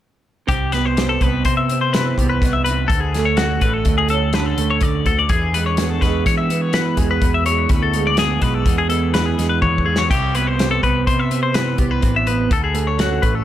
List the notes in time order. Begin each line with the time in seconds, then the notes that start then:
0.47 C2 C3 G4, kick, closed hi-hat
0.72 B3 B4, snare, closed hi-hat
0.86 C5
0.97 C4, snare, closed hi-hat
1.09 A4
1.21 C2 B3 B4, kick, closed hi-hat
1.44 C3 C5, kick, closed hi-hat
1.57 E5
1.69 C4, closed hi-hat
1.81 C5
1.93 E3 B4, snare, closed hi-hat
2.17 C2 B3 G4, kick, closed hi-hat
2.30 B4
2.42 C2 B2, kick, snare, closed hi-hat
2.53 E5
2.65 C3 B4, closed hi-hat
2.88 D2 A4, kick, closed hi-hat
2.93 D2
3.00 G#4
3.15 A3, snare, closed hi-hat
3.25 C#5
3.37 C#4 F#4, snare, closed hi-hat
3.61 A1 A3 B4, kick, closed hi-hat
3.73 A4
3.85 D2 A2, kick, closed hi-hat
3.98 G#4
4.09 C#4 A4, closed hi-hat
4.33 D3 B4, snare, closed hi-hat
4.46 A4
4.57 D2 A3, closed hi-hat
4.71 C#5
4.81 D2 D5, kick, closed hi-hat
5.06 D2 A4, kick, closed hi-hat
5.19 D5
5.29 E2 G#4, kick, closed hi-hat
5.54 G#3 B4, closed hi-hat
5.66 C#5
5.77 B3, snare, closed hi-hat
5.90 A4
6.01 E2 G#3 B4, kick, snare, closed hi-hat
6.24 B2 E3 C#5, kick, snare, closed hi-hat
6.38 E5
6.50 B3, closed hi-hat
6.61 C#5
6.73 E3 B4, snare, closed hi-hat
6.97 E2 G#3 G#4, kick, closed hi-hat
7.11 B4
7.20 E2, kick, closed hi-hat
7.34 E5
7.46 G#3 C#5, closed hi-hat
7.69 D2 E2 B4, kick, closed hi-hat
7.83 A4
7.94 G#3, closed hi-hat
8.07 D5
8.17 B3 G#4, snare, closed hi-hat
8.40 B1 G#3 B4, kick, closed hi-hat
8.54 A4
8.64 E2 B2, kick, closed hi-hat
8.78 G#4
8.89 B3 A4, closed hi-hat
9.11 E3 B4, snare, closed hi-hat
9.26 G#4
9.38 E2 G#3, snare, closed hi-hat
9.49 B4
9.61 E2 C#5, kick, high tom
9.78 kick
9.86 E2 G#3 G#4
9.96 C#5, snare
10.09 C2 C3 G4, kick, closed hi-hat, crash
10.35 B3 B4, closed hi-hat
10.47 C5
10.59 C4, snare, closed hi-hat
10.71 A4
10.83 C2 B3 B4, kick, closed hi-hat
11.06 C3 C5, kick, closed hi-hat
11.20 E5
11.31 C4, closed hi-hat
11.43 C5
11.54 E3 B4, snare, closed hi-hat
11.78 C2 B3 G4, kick, closed hi-hat
11.91 B4
12.01 A1 C3, kick, closed hi-hat
12.16 E5
12.27 B3 B4, closed hi-hat
12.49 D2 A4, kick, closed hi-hat
12.64 G#4
12.74 A3, closed hi-hat
12.87 C#5
12.98 C#4 F#4, snare, closed hi-hat
13.22 A1 A3 B4, kick, closed hi-hat
13.35 A4